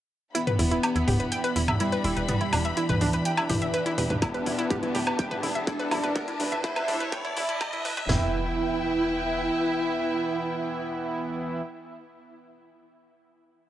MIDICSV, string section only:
0, 0, Header, 1, 2, 480
1, 0, Start_track
1, 0, Key_signature, 1, "minor"
1, 0, Tempo, 483871
1, 347, Time_signature, 4, 2, 24, 8
1, 13585, End_track
2, 0, Start_track
2, 0, Title_t, "String section"
2, 0, Program_c, 0, 48
2, 344, Note_on_c, 0, 67, 69
2, 345, Note_on_c, 0, 62, 76
2, 345, Note_on_c, 0, 76, 68
2, 345, Note_on_c, 0, 83, 86
2, 4148, Note_off_c, 0, 83, 0
2, 4188, Note_on_c, 0, 81, 87
2, 7986, Note_off_c, 0, 62, 0
2, 7986, Note_off_c, 0, 67, 0
2, 7987, Note_off_c, 0, 76, 0
2, 7989, Note_off_c, 0, 81, 0
2, 8027, Note_on_c, 0, 71, 74
2, 8027, Note_on_c, 0, 76, 74
2, 8028, Note_on_c, 0, 64, 78
2, 8028, Note_on_c, 0, 79, 90
2, 11524, Note_off_c, 0, 71, 0
2, 11524, Note_off_c, 0, 76, 0
2, 11525, Note_off_c, 0, 64, 0
2, 11525, Note_off_c, 0, 79, 0
2, 13585, End_track
0, 0, End_of_file